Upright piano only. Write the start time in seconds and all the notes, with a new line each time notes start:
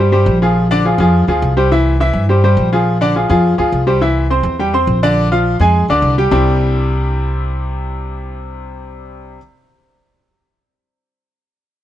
0.00 G4 C5
0.12 G3 G4 C5
0.42 F3 F4 G#4
0.71 D3 D4 D5
0.85 F3 F4 G#4
1.00 F3 F4 G#4
1.28 F3 F4 G#4
1.57 G3 G4 C5
1.71 E3 E4 E5
2.00 E3 E4 E5
2.29 G3 G4 C5
2.44 G3 G4 C5
2.73 F3 F4 G#4
3.01 D3 D4 D5
3.16 F3 F4 G#4
3.30 F3 F4 G#4
3.58 F3 F4 G#4
3.87 G3 G4 C5
4.01 E3 E4 E5
4.30 C4 C5 C6
4.59 G3 G4 G5
4.74 C4 C5 C6
5.03 D3 D4 D5
5.32 F3 F4 F5
5.60 G#3 G#4 G#5
5.90 D3 D4 D5
6.18 G3 G4 G5
6.31 C3 G3 C4 D4 E4 G4